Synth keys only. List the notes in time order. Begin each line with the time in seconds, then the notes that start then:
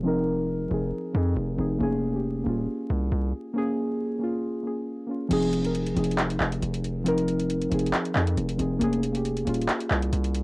Already playing: F3 C4 D#4 G#4 A#4
0.03 F3 C4 D#4
0.07 A#4
0.69 F3 C4 D#4
0.73 G#4
1.13 F3 C4 D#4
1.17 G#4
1.56 F3 C4 D#4
1.60 G#4
1.79 A#3 C#4
1.83 G#4
2.12 A#3 C#4
2.16 G4
2.44 A#3 C#4
2.48 F4
3.54 A#3 C#4
3.58 G#4
4.19 A#3 C#4
4.23 F4
4.63 A#3 C#4
4.67 G#4
5.07 A#3 C#4
5.11 F4
5.29 F3 C4 D#4
5.33 G#4
5.62 F3 C4 D#4
5.66 A#4
5.94 F3 C4 D#4
5.98 G#4
7.04 F3 C4 D#4
7.08 A#4
7.70 F3 C4 D#4
7.74 G#4
8.13 F3 C4 D#4
8.18 G#4
8.57 F3 C4 D#4
8.61 G#4
8.79 A#3 C#4
8.83 G#4
9.12 A#3 C#4
9.16 G4
9.45 A#3 C#4
9.49 F4